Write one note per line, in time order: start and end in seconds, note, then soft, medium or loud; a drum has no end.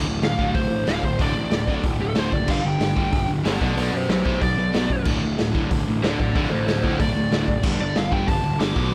0.00 0.52 D2 medium
0.00 0.54 A2 loud
0.00 0.57 D3 loud
0.06 0.19 D1 medium
0.06 0.21 D2 medium
0.06 0.21 A2 medium
0.22 0.35 D1 medium
0.22 0.37 D2 medium
0.22 0.37 A2 medium
0.22 0.55 F5 medium
0.22 snare loud
0.22 open hi-hat medium
0.38 0.51 D1 medium
0.38 0.53 D2 medium
0.38 0.54 A2 loud
0.38 0.54 D3 loud
0.38 kick medium
0.55 0.67 D1 loud
0.55 0.69 D2 medium
0.55 0.69 A2 medium
0.55 1.20 D3 medium
0.55 0.86 C5 medium
0.55 kick loud
0.55 open hi-hat medium
0.70 0.84 A1 medium
0.70 0.85 D2 medium
0.70 0.85 A2 medium
0.86 0.99 D1 medium
0.86 1.02 D2 loud
0.86 1.02 A2 medium
0.86 1.02 D3 loud
0.86 1.04 F5 loud
0.86 snare loud
0.86 open hi-hat medium
1.03 1.16 D1 medium
1.03 1.17 D2 medium
1.03 1.17 A2 medium
1.03 1.21 C5 medium
1.03 kick medium
1.18 1.32 D1 medium
1.18 1.33 D2 medium
1.18 1.34 A2 medium
1.18 1.34 D3 loud
1.18 1.83 D5 loud
1.18 kick loud
1.18 open hi-hat medium
1.35 1.48 A1 medium
1.35 1.49 D2 medium
1.35 1.50 A2 medium
1.50 1.64 D1 loud
1.50 1.65 D2 medium
1.50 1.66 A2 medium
1.50 snare loud
1.50 open hi-hat medium
1.67 1.80 D1 medium
1.67 1.83 D2 medium
1.67 1.83 A2 medium
1.67 1.83 D3 loud
1.67 kick medium
1.83 1.96 D1 loud
1.83 1.98 D2 medium
1.83 1.99 A2 medium
1.83 2.48 D3 medium
1.83 kick loud
1.83 open hi-hat medium
2.00 2.12 D1 medium
2.00 2.14 D2 medium
2.00 2.14 A2 medium
2.00 2.18 A4 loud
2.15 2.29 D1 loud
2.15 2.31 D2 loud
2.15 2.31 A2 loud
2.15 2.31 D3 loud
2.15 2.33 C5 loud
2.15 snare loud
2.15 open hi-hat medium
2.32 2.48 F#1 medium
2.32 2.46 D2 medium
2.32 2.47 A2 medium
2.32 2.48 D5 medium
2.32 kick medium
2.47 2.61 G1 medium
2.47 2.62 G2 medium
2.47 2.63 D3 loud
2.47 2.63 G3 loud
2.47 2.65 F5 medium
2.47 kick loud
2.47 crash loud
2.64 2.77 G1 medium
2.64 2.78 G2 medium
2.64 2.79 D3 medium
2.64 3.28 G5 loud
2.79 2.92 G1 loud
2.79 2.94 G2 medium
2.79 2.95 D3 medium
2.79 snare loud
2.79 open hi-hat medium
2.96 3.09 G1 medium
2.96 3.10 G2 loud
2.96 3.11 D3 loud
2.96 3.12 G3 medium
2.96 kick medium
3.11 3.25 G1 loud
3.11 3.26 G2 medium
3.11 3.27 D3 medium
3.11 kick loud
3.11 open hi-hat medium
3.16 3.61 G3 medium
3.28 3.41 D1 medium
3.28 3.42 G2 medium
3.28 3.43 D3 medium
3.44 3.57 G1 medium
3.44 3.59 G2 medium
3.44 3.60 D3 medium
3.44 3.60 G3 loud
3.44 3.61 A4 medium
3.44 3.61 D5 loud
3.44 snare loud
3.44 open hi-hat medium
3.60 3.73 B1 loud
3.60 3.74 B2 medium
3.60 3.75 F#3 loud
3.60 3.75 B3 loud
3.60 3.77 A4 loud
3.60 3.78 D5 medium
3.60 kick loud
3.76 3.89 B1 loud
3.76 3.91 B2 medium
3.76 3.92 F#3 loud
3.76 3.92 B3 medium
3.76 open hi-hat medium
3.81 3.95 A4 medium
3.81 3.96 D5 loud
3.92 4.05 F#2 medium
3.92 4.07 B2 medium
3.92 4.07 F#3 medium
3.92 4.08 G4 medium
3.96 4.09 C5 medium
4.08 4.21 B1 loud
4.08 4.23 B2 medium
4.08 4.23 F#3 medium
4.08 4.24 G4 medium
4.08 4.25 C5 medium
4.08 snare loud
4.08 open hi-hat medium
4.24 4.38 B1 medium
4.24 4.39 B2 loud
4.24 4.39 F#3 medium
4.24 4.41 B3 loud
4.24 4.41 G4 medium
4.24 4.41 C5 medium
4.24 kick loud
4.40 4.54 B1 loud
4.40 4.55 B2 medium
4.40 4.56 F#3 medium
4.40 5.04 D5 medium
4.40 kick loud
4.40 open hi-hat medium
4.57 4.70 B1 medium
4.57 4.71 B2 medium
4.57 4.71 F#3 medium
4.72 4.87 B1 medium
4.72 4.87 B2 medium
4.72 4.88 F#3 loud
4.72 4.89 B3 loud
4.72 snare loud
4.72 open hi-hat medium
4.88 5.02 F#2 loud
4.88 5.04 B2 medium
4.88 5.04 F#3 medium
4.88 kick medium
5.04 5.18 D1 medium
5.04 5.20 D2 medium
5.04 5.20 A2 loud
5.04 5.21 D3 loud
5.04 kick loud
5.04 crash loud
5.10 5.74 D3 loud
5.22 5.35 D1 medium
5.22 5.36 D2 medium
5.22 5.37 A2 medium
5.37 5.52 D1 loud
5.37 5.52 D2 medium
5.37 5.52 A2 medium
5.37 snare loud
5.37 open hi-hat medium
5.53 5.67 D1 medium
5.53 5.69 D2 medium
5.53 5.69 A2 medium
5.53 5.69 D3 loud
5.53 kick medium
5.70 5.83 D1 medium
5.70 5.85 D2 medium
5.70 5.85 A2 medium
5.70 kick loud
5.70 open hi-hat medium
5.74 6.36 D3 medium
5.87 5.99 A1 medium
5.87 6.02 D2 medium
5.87 6.02 A2 medium
6.03 6.16 D1 medium
6.03 6.18 D2 medium
6.03 6.18 A2 medium
6.03 6.18 D3 loud
6.03 6.19 A4 loud
6.03 6.19 D5 loud
6.03 snare loud
6.03 open hi-hat medium
6.19 6.32 D1 medium
6.19 6.33 D2 medium
6.19 6.34 A2 medium
6.19 6.34 A4 medium
6.19 6.34 D5 medium
6.19 kick medium
6.35 6.47 D1 medium
6.35 6.50 D2 medium
6.35 6.50 A2 loud
6.35 6.50 D3 loud
6.35 6.49 A4 medium
6.35 6.51 D5 loud
6.35 kick loud
6.35 open hi-hat medium
6.50 6.64 A1 medium
6.50 6.66 D2 medium
6.50 6.66 A2 medium
6.50 6.66 A4 medium
6.50 6.67 C5 medium
6.67 6.80 D1 loud
6.67 6.82 D2 medium
6.67 6.82 A2 medium
6.67 6.81 A4 medium
6.67 6.82 C5 medium
6.67 snare loud
6.67 open hi-hat medium
6.83 6.96 D1 medium
6.83 6.98 D2 medium
6.83 6.99 A2 medium
6.83 6.99 D3 loud
6.83 6.98 A4 medium
6.83 6.99 C5 medium
6.83 kick medium
6.99 7.12 D1 loud
6.99 7.14 D2 medium
6.99 7.14 A2 medium
6.99 7.63 D3 medium
6.99 7.62 D5 loud
6.99 kick loud
6.99 open hi-hat medium
7.15 7.28 D1 medium
7.15 7.30 D2 medium
7.15 7.31 A2 medium
7.32 7.44 D1 medium
7.32 7.47 D2 medium
7.32 7.47 A2 medium
7.32 7.47 D3 loud
7.32 snare loud
7.32 open hi-hat medium
7.48 7.60 F#1 medium
7.48 7.62 D2 medium
7.48 7.63 A2 medium
7.48 kick medium
7.63 7.76 G1 medium
7.63 7.79 G2 medium
7.63 7.79 D3 medium
7.63 7.80 G3 loud
7.63 kick loud
7.63 crash loud
7.80 7.92 G1 medium
7.80 7.94 G2 medium
7.80 7.95 D3 medium
7.80 7.96 D5 loud
7.95 8.09 G1 loud
7.95 8.10 G2 medium
7.95 8.10 D3 medium
7.95 8.12 F5 medium
7.95 snare loud
7.95 open hi-hat medium
8.11 8.24 G1 medium
8.11 8.27 G2 loud
8.11 8.27 D3 loud
8.11 8.27 G3 loud
8.11 8.27 G5 medium
8.11 kick loud
8.27 8.40 G1 loud
8.27 8.42 G2 medium
8.27 8.43 D3 medium
8.27 8.77 G3 medium
8.27 8.59 A5 loud
8.27 kick loud
8.27 open hi-hat medium
8.44 8.56 D1 medium
8.44 8.58 G2 medium
8.44 8.58 D3 medium
8.59 8.72 G1 medium
8.59 8.75 G2 medium
8.59 8.75 D3 loud
8.59 8.75 G3 loud
8.59 8.91 D6 loud
8.59 snare loud
8.59 open hi-hat medium
8.75 8.88 B1 medium
8.75 8.91 B2 medium
8.75 8.91 F#3 loud
8.75 8.91 B3 loud
8.75 kick loud